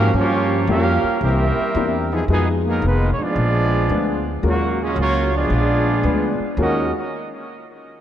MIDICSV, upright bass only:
0, 0, Header, 1, 3, 480
1, 0, Start_track
1, 0, Key_signature, -6, "minor"
1, 0, Tempo, 535714
1, 132, Time_signature, 4, 2, 24, 8
1, 7174, End_track
2, 0, Start_track
2, 0, Title_t, "Upright bass"
2, 0, Program_c, 0, 32
2, 0, Note_on_c, 0, 44, 102
2, 114, Note_off_c, 0, 44, 0
2, 123, Note_on_c, 0, 43, 86
2, 593, Note_off_c, 0, 43, 0
2, 604, Note_on_c, 0, 41, 98
2, 906, Note_off_c, 0, 41, 0
2, 1083, Note_on_c, 0, 36, 93
2, 1385, Note_off_c, 0, 36, 0
2, 1565, Note_on_c, 0, 40, 99
2, 2033, Note_off_c, 0, 40, 0
2, 2044, Note_on_c, 0, 41, 87
2, 2513, Note_off_c, 0, 41, 0
2, 2526, Note_on_c, 0, 29, 99
2, 2827, Note_off_c, 0, 29, 0
2, 3007, Note_on_c, 0, 34, 92
2, 3474, Note_off_c, 0, 34, 0
2, 3488, Note_on_c, 0, 38, 98
2, 3955, Note_off_c, 0, 38, 0
2, 3969, Note_on_c, 0, 39, 88
2, 4436, Note_off_c, 0, 39, 0
2, 4444, Note_on_c, 0, 37, 102
2, 4913, Note_off_c, 0, 37, 0
2, 4927, Note_on_c, 0, 34, 92
2, 5395, Note_off_c, 0, 34, 0
2, 5407, Note_on_c, 0, 38, 95
2, 5708, Note_off_c, 0, 38, 0
2, 5887, Note_on_c, 0, 39, 96
2, 6188, Note_off_c, 0, 39, 0
2, 7174, End_track
3, 0, Start_track
3, 0, Title_t, "Muted upright bass strokes"
3, 928, Note_on_c, 9, 29, 45
3, 1018, Note_off_c, 9, 29, 0
3, 1405, Note_on_c, 9, 29, 40
3, 1495, Note_off_c, 9, 29, 0
3, 2848, Note_on_c, 9, 29, 41
3, 2938, Note_off_c, 9, 29, 0
3, 5728, Note_on_c, 9, 29, 40
3, 5818, Note_off_c, 9, 29, 0
3, 7174, End_track
0, 0, End_of_file